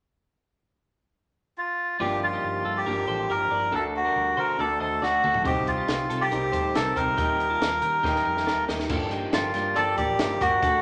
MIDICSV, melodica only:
0, 0, Header, 1, 2, 480
1, 0, Start_track
1, 0, Key_signature, -2, "minor"
1, 0, Tempo, 431344
1, 310, Time_signature, 4, 2, 24, 8
1, 12038, End_track
2, 0, Start_track
2, 0, Title_t, "Melodica"
2, 0, Program_c, 0, 22
2, 1755, Note_on_c, 0, 65, 73
2, 2199, Note_off_c, 0, 65, 0
2, 2230, Note_on_c, 0, 67, 77
2, 2454, Note_off_c, 0, 67, 0
2, 2480, Note_on_c, 0, 65, 79
2, 3082, Note_on_c, 0, 67, 80
2, 3093, Note_off_c, 0, 65, 0
2, 3679, Note_on_c, 0, 70, 90
2, 3694, Note_off_c, 0, 67, 0
2, 4169, Note_off_c, 0, 70, 0
2, 4173, Note_on_c, 0, 69, 80
2, 4276, Note_off_c, 0, 69, 0
2, 4411, Note_on_c, 0, 66, 78
2, 4882, Note_on_c, 0, 70, 88
2, 4895, Note_off_c, 0, 66, 0
2, 5112, Note_on_c, 0, 69, 90
2, 5123, Note_off_c, 0, 70, 0
2, 5334, Note_off_c, 0, 69, 0
2, 5352, Note_on_c, 0, 69, 77
2, 5596, Note_on_c, 0, 66, 81
2, 5598, Note_off_c, 0, 69, 0
2, 6040, Note_off_c, 0, 66, 0
2, 6075, Note_on_c, 0, 67, 84
2, 6317, Note_on_c, 0, 65, 79
2, 6320, Note_off_c, 0, 67, 0
2, 6911, Note_on_c, 0, 67, 84
2, 6932, Note_off_c, 0, 65, 0
2, 7512, Note_on_c, 0, 69, 84
2, 7529, Note_off_c, 0, 67, 0
2, 7749, Note_on_c, 0, 70, 87
2, 7758, Note_off_c, 0, 69, 0
2, 9624, Note_off_c, 0, 70, 0
2, 10385, Note_on_c, 0, 65, 82
2, 10856, Note_on_c, 0, 69, 103
2, 10881, Note_off_c, 0, 65, 0
2, 11084, Note_off_c, 0, 69, 0
2, 11100, Note_on_c, 0, 67, 86
2, 11585, Note_on_c, 0, 66, 84
2, 11598, Note_off_c, 0, 67, 0
2, 12038, Note_off_c, 0, 66, 0
2, 12038, End_track
0, 0, End_of_file